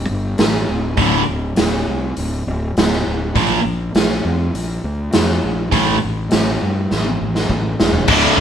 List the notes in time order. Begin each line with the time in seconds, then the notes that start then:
0.09 G1
0.38 A1, snare, open hi-hat
0.69 D1
0.97 D1 D2 A2 D3, kick, open hi-hat
1.29 D1
1.56 D1, snare, open hi-hat
1.87 C2
2.17 D1, open hi-hat
2.47 D1
2.77 D1, snare, open hi-hat
2.92 snare
3.07 D1
3.35 A#1 A#2 F3 A#3, kick, open hi-hat
3.65 A#1
3.95 A#1, snare, open hi-hat
4.25 F2
4.54 A#1, open hi-hat
4.84 D2
5.13 F2, snare, open hi-hat
5.44 A#1
5.72 A1 A2 E3 A3, kick, open hi-hat
6.05 A1
6.31 A1, snare, open hi-hat
6.61 G2
6.91 A1, snare
7.05 high tom
7.21 A1
7.35 snare
7.50 A1, kick
7.80 E1, snare
7.93 floor tom
8.07 D1 D2 A2 D3 D4 A4 F5, kick, crash